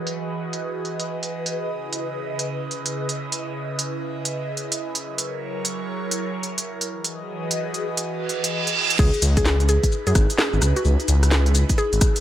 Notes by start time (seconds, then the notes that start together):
Already playing: E3 F#4 G#4 B4 D#5
0.07 closed hi-hat
0.53 closed hi-hat
0.85 closed hi-hat
1.00 closed hi-hat
1.23 closed hi-hat
1.46 closed hi-hat
1.55 C#3 E4
1.93 closed hi-hat
2.39 closed hi-hat
2.71 closed hi-hat
2.86 closed hi-hat
3.09 closed hi-hat
3.32 closed hi-hat
3.79 closed hi-hat
4.25 closed hi-hat
4.57 closed hi-hat
4.72 closed hi-hat
4.95 closed hi-hat
5.04 F#3 A#4 C#5
5.18 closed hi-hat
5.65 closed hi-hat
6.11 closed hi-hat
6.43 closed hi-hat
6.58 closed hi-hat
6.81 closed hi-hat
6.90 E3 F#4 G#4 B4 D#5
7.04 closed hi-hat
7.51 closed hi-hat
7.74 closed hi-hat
7.97 closed hi-hat
8.06 reverse cymbal
8.29 closed hi-hat
8.44 closed hi-hat
8.67 closed hi-hat
8.90 closed hi-hat
8.99 C#2 D#4 E4 G#4 B4, kick, crash, shaker
9.14 closed hi-hat, shaker
9.22 C#2, closed hi-hat, shaker
9.37 G#4, kick, closed hi-hat, shaker
9.46 snare, shaker
9.60 closed hi-hat, shaker
9.69 G#4, closed hi-hat, shaker
9.83 kick, closed hi-hat, shaker
9.92 shaker
10.07 F#2 G#4, closed hi-hat, shaker
10.15 G#1, kick, cross-stick, closed hi-hat, shaker
10.30 closed hi-hat, shaker
10.38 G#4, snare, shaker
10.53 G#1, shaker
10.62 C#2, cross-stick, closed hi-hat, shaker
10.76 F#4, closed hi-hat, shaker
10.85 C#2, shaker
11.00 closed hi-hat, shaker
11.08 C#2, closed hi-hat, shaker
11.23 cross-stick, closed hi-hat, shaker
11.31 snare, shaker
11.46 closed hi-hat, shaker
11.55 closed hi-hat, shaker
11.69 kick, closed hi-hat, shaker
11.78 G#4, shaker
11.93 G#1, closed hi-hat, shaker
12.01 kick, cross-stick, closed hi-hat, shaker
12.16 closed hi-hat, shaker